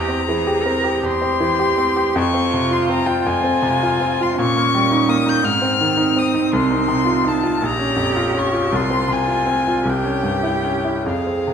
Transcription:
0.00 1.01 E2 medium
0.00 0.26 G4 medium
0.00 1.06 A#5 medium
0.08 0.39 C4 soft
0.27 0.58 E3 soft
0.27 0.64 G#4 medium
0.47 0.76 G4 soft
0.63 0.95 C4 soft
0.63 1.01 A#4 medium
0.84 1.14 G4 soft
1.01 2.14 E2 soft
1.01 2.18 G4 medium
1.01 2.17 C6 medium
1.22 1.53 C4 soft
1.40 1.72 E3 soft
1.59 1.90 G4 soft
1.78 2.09 C4 soft
1.96 2.16 G4 soft
2.16 3.25 F2 medium
2.16 3.25 F4 medium
2.16 2.74 C#6 medium
2.34 2.64 C4 soft
2.54 2.83 C3 soft
2.71 3.01 F4 soft
2.71 2.90 C6 medium
2.89 3.19 C4 soft
2.89 3.08 A#5 medium
3.06 3.36 F4 soft
3.06 3.27 G5 medium
3.25 4.33 F2 soft
3.25 4.37 F4 medium
3.25 4.24 G#5 medium
3.44 3.74 C4 soft
3.62 3.92 C3 soft
3.83 4.12 F4 soft
4.00 4.30 C4 soft
4.21 4.38 F4 soft
4.21 4.39 C6 medium
4.36 5.41 A#2 medium
4.36 5.45 C#4 medium
4.40 5.11 C#6 medium
4.56 4.84 A#3 soft
4.74 5.02 G3 soft
4.91 5.19 D#4 soft
5.09 5.37 A#3 soft
5.09 5.30 D#6 medium
5.26 5.44 D#4 soft
5.26 5.46 G6 medium
5.43 6.49 G#2 soft
5.43 7.64 C4 medium
5.43 6.20 F6 medium
5.62 5.91 C4 soft
5.81 6.10 D#3 soft
5.97 6.27 D#4 soft
6.16 6.45 C4 soft
6.16 6.53 D#6 medium
6.34 6.52 D#4 soft
6.53 7.58 C2 medium
6.53 7.30 C6 medium
6.71 6.99 D#4 soft
6.88 7.17 C3 soft
7.05 7.35 F4 soft
7.24 7.54 D#4 soft
7.24 7.67 A5 medium
7.43 7.61 F4 soft
7.62 8.69 A#1 medium
7.62 8.76 G4 medium
7.62 8.40 A#5 medium
7.79 8.09 C#4 soft
7.96 8.27 F2 soft
8.16 8.46 F4 soft
8.34 8.64 C#4 soft
8.39 8.78 C#6 medium
8.53 8.72 F4 soft
8.72 9.83 C2 medium
8.72 9.87 F4 medium
8.77 9.14 C6 medium
8.90 9.21 C4 soft
9.08 9.39 C3 soft
9.12 9.91 G#5 medium
9.27 9.59 F4 soft
9.46 9.78 C4 soft
9.67 9.86 F4 soft
9.85 11.02 C2 soft
9.85 11.05 G4 medium
9.89 11.08 G5 medium
10.04 10.36 C#4 soft
10.23 10.56 G2 soft
10.43 10.76 E4 soft
10.64 10.98 C#4 soft
10.84 11.06 E4 soft
11.06 11.54 F2 soft
11.06 11.54 G#4 soft
11.06 11.54 F5 soft
11.26 11.54 C4 soft
11.47 11.54 C3 soft

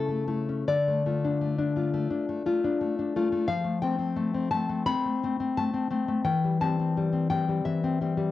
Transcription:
0.00 0.64 C#3 medium
0.00 0.48 C#4 medium
0.00 0.27 E4 medium
0.00 0.65 A4 medium
0.09 0.26 A3 medium
0.28 0.64 A3 medium
0.28 0.64 E4 medium
0.49 0.68 C#4 medium
0.68 2.07 D3 medium
0.68 3.43 D5 loud
0.88 1.05 A3 soft
1.06 1.40 A3 soft
1.06 1.76 F4 medium
1.25 1.57 D4 medium
1.41 1.75 A3 medium
1.58 2.09 D4 medium
1.76 1.93 A3 medium
1.76 2.45 F4 medium
1.94 2.28 A3 medium
2.10 2.63 D4 medium
2.29 2.45 A3 medium
2.46 2.80 A3 medium
2.46 3.15 F4 medium
2.64 2.98 D4 medium
2.81 3.15 A3 medium
2.99 3.48 D4 medium
3.16 3.31 A3 medium
3.16 3.45 F4 medium
3.32 3.48 A3 medium
3.48 4.85 F3 medium
3.48 3.80 F5 loud
3.64 3.81 A3 medium
3.82 4.15 A3 soft
3.82 3.97 C4 medium
3.82 4.50 G5 medium
3.99 4.33 C4 medium
4.16 4.51 A3 medium
4.34 4.51 C4 medium
4.51 4.68 A3 medium
4.51 4.85 C4 medium
4.51 4.86 A5 loud
4.69 5.04 A3 medium
4.86 5.23 C4 medium
4.86 5.54 B5 loud
5.06 5.22 A3 medium
5.23 5.56 A3 medium
5.23 5.39 C4 medium
5.40 5.73 C4 medium
5.57 5.89 A3 medium
5.57 6.23 A5 loud
5.74 5.90 C4 medium
5.91 6.07 A3 medium
5.91 6.22 C4 medium
6.08 6.24 A3 medium
6.25 7.60 E3 medium
6.25 6.59 G5 loud
6.44 6.60 G3 medium
6.61 6.96 G3 medium
6.61 6.78 C4 medium
6.61 7.28 A5 loud
6.79 7.12 C4 medium
6.97 7.30 G3 medium
7.13 7.30 C4 medium
7.30 7.48 G3 medium
7.30 7.82 C4 medium
7.30 7.63 G5 loud
7.49 8.00 G3 medium
7.65 8.31 E3 medium
7.65 8.31 E5 loud
7.84 8.01 C4 medium
8.01 8.16 G3 medium
8.01 8.31 C4 medium
8.17 8.31 G3 medium

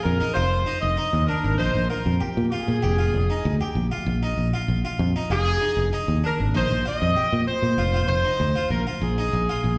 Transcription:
0.00 0.13 F4 medium
0.00 0.33 A#4 loud
0.05 0.19 F2 loud
0.20 0.32 D#4 medium
0.20 muted fingered electric bass stroke soft
0.34 0.63 F1 loud
0.34 0.58 F4 loud
0.34 0.78 C5 loud
0.66 0.90 D#4 medium
0.81 0.96 F1 medium
0.81 1.24 D#5 loud
0.97 1.21 D#4 medium
1.13 1.26 D#2 medium
1.27 1.52 D4 medium
1.27 1.56 A#4 medium
1.44 1.57 G#1 medium
1.58 1.73 A#1 loud
1.58 1.83 D#4 medium
1.58 1.87 C5 loud
1.75 1.89 A#1 medium
1.89 2.13 F4 medium
1.89 2.22 A#4 medium
2.06 2.19 F2 medium
2.21 2.44 G4 medium
2.21 muted fingered electric bass stroke soft
2.37 2.50 A#2 loud
2.50 2.75 F4 medium
2.50 3.71 G#4 medium
2.68 2.81 A#2 medium
2.82 3.10 F1 loud
2.82 2.95 G4 loud
2.99 3.22 F4 medium
3.14 3.28 F1 loud
3.30 3.53 D#4 medium
3.45 3.59 D2 loud
3.61 3.84 G4 medium
3.61 muted fingered electric bass stroke soft
3.75 3.89 A#1 loud
3.92 4.15 F4 medium
4.06 4.34 A#1 loud
4.23 4.46 D#4 medium
4.37 4.52 A#1 loud
4.54 4.77 F4 medium
4.68 4.82 A#1 loud
4.85 5.08 F4 medium
4.99 5.13 F2 loud
5.16 5.27 D#4 medium
5.16 muted fingered electric bass stroke soft
5.30 5.57 F1 loud
5.30 5.54 F4 loud
5.30 5.89 G#4 loud
5.61 5.85 D#4 medium
5.77 5.90 F1 loud
5.93 6.16 D#4 medium
6.08 6.21 D#2 medium
6.24 6.47 D4 medium
6.24 6.39 A#4 loud
6.40 6.53 G#1 medium
6.54 6.68 A#1 loud
6.54 6.77 D#4 loud
6.54 6.84 C5 loud
6.71 6.84 A#1 medium
6.85 7.08 F4 medium
6.85 7.44 D#5 loud
7.02 7.15 F2 medium
7.16 7.39 G4 medium
7.16 muted fingered electric bass stroke soft
7.33 7.45 A#2 medium
7.47 8.05 C5 loud
7.62 7.76 A#2 medium
7.78 8.05 F1 loud
7.78 7.90 F4 loud
7.94 8.17 F4 medium
8.07 8.22 F1 loud
8.07 8.66 C5 loud
8.25 8.48 D#4 medium
8.40 8.54 D2 loud
8.56 8.79 F4 medium
8.56 muted fingered electric bass stroke soft
8.70 8.84 A#1 medium
8.70 8.85 A#4 medium
8.87 9.10 F4 medium
9.02 9.29 A#1 loud
9.02 9.78 G#4 medium
9.18 9.41 D#4 medium
9.33 9.47 A#1 medium
9.49 9.72 F4 medium
9.64 9.78 A#1 medium

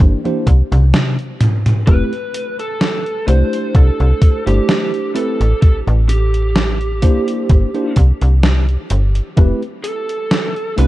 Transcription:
0.00 0.15 G1 medium
0.00 0.18 A#3 medium
0.00 0.19 D4 medium
0.00 0.19 E4 medium
0.00 0.19 G4 medium
0.00 0.19 C5 medium
0.00 kick loud
0.00 closed hi-hat medium
0.00 high tom medium
0.24 0.45 A#3 medium
0.24 0.45 D4 medium
0.24 0.45 E4 medium
0.24 0.45 G4 medium
0.24 0.45 C5 medium
0.24 closed hi-hat soft
0.24 high tom medium
0.47 0.62 C2 medium
0.47 kick medium
0.47 closed hi-hat medium
0.72 0.93 C2 medium
0.72 closed hi-hat medium
0.72 mid tom medium
0.94 snare loud
0.94 closed hi-hat medium
0.94 mid tom medium
1.19 closed hi-hat soft
1.41 closed hi-hat medium
1.41 mid tom loud
1.66 closed hi-hat medium
1.66 mid tom medium
1.87 2.03 F1 medium
1.87 2.10 A3 medium
1.87 2.11 C4 medium
1.87 2.11 E4 medium
1.87 2.11 G4 medium
1.87 2.55 B4 loud
1.87 2.11 B4 loud
1.87 kick loud
1.87 closed hi-hat medium
2.13 closed hi-hat soft
2.34 closed hi-hat medium
2.59 3.27 A4 medium
2.59 closed hi-hat medium
2.81 snare loud
2.81 closed hi-hat medium
3.06 closed hi-hat soft
3.27 3.43 C2 medium
3.27 4.40 A3 medium
3.27 4.41 D4 medium
3.27 4.41 E4 medium
3.27 4.41 G4 medium
3.27 3.76 C5 loud
3.27 4.42 C5 medium
3.27 closed hi-hat medium
3.53 closed hi-hat medium
3.75 3.90 C2 loud
3.75 4.46 A4 loud
3.75 kick loud
3.75 closed hi-hat medium
4.00 4.14 C2 loud
4.00 closed hi-hat soft
4.22 kick loud
4.22 closed hi-hat medium
4.46 4.60 G1 medium
4.46 5.12 A3 medium
4.46 5.12 D4 medium
4.46 5.13 E4 medium
4.46 5.11 G4 medium
4.46 5.13 G4 medium
4.46 5.13 C5 medium
4.46 closed hi-hat medium
4.69 snare loud
4.69 closed hi-hat medium
4.94 closed hi-hat soft
5.15 5.38 A3 medium
5.15 5.38 C4 medium
5.15 5.39 E4 medium
5.15 5.39 G4 medium
5.15 5.61 A4 medium
5.15 5.39 B4 medium
5.15 closed hi-hat medium
5.40 5.54 A1 medium
5.40 closed hi-hat medium
5.62 5.82 A1 soft
5.62 5.75 A4 medium
5.62 kick loud
5.62 closed hi-hat medium
5.87 7.04 A1 loud
5.87 closed hi-hat soft
6.09 7.93 G4 medium
6.09 closed hi-hat medium
6.34 closed hi-hat soft
6.56 snare loud
6.56 closed hi-hat medium
6.81 closed hi-hat soft
7.02 7.19 C2 medium
7.02 7.69 A#3 medium
7.02 7.69 D4 medium
7.02 7.69 E4 medium
7.02 7.69 G4 medium
7.02 7.69 C5 medium
7.02 kick medium
7.02 closed hi-hat loud
7.28 closed hi-hat medium
7.50 7.65 G1 medium
7.50 kick loud
7.50 closed hi-hat medium
7.74 7.95 A#3 medium
7.74 7.95 D4 medium
7.74 7.95 E4 medium
7.74 7.95 G4 medium
7.74 7.95 C5 medium
7.74 closed hi-hat soft
7.96 8.12 C2 medium
7.96 kick medium
7.96 closed hi-hat medium
8.22 8.77 C2 medium
8.22 closed hi-hat medium
8.43 snare loud
8.43 closed hi-hat medium
8.69 closed hi-hat soft
8.90 9.21 G1 medium
8.90 closed hi-hat medium
9.15 closed hi-hat medium
9.36 9.53 F1 medium
9.36 9.60 A3 medium
9.36 9.60 C4 medium
9.36 9.61 E4 medium
9.36 9.61 G4 medium
9.36 9.61 B4 loud
9.36 kick loud
9.36 closed hi-hat medium
9.63 closed hi-hat soft
9.84 10.74 A4 medium
9.84 closed hi-hat medium
10.09 closed hi-hat soft
10.31 snare loud
10.31 closed hi-hat medium
10.56 closed hi-hat soft
10.76 10.87 C2 medium
10.76 10.87 A3 medium
10.76 10.87 C4 medium
10.76 10.87 D4 medium
10.76 10.87 E4 medium
10.76 10.87 G4 medium
10.76 10.87 B4 loud
10.76 closed hi-hat medium

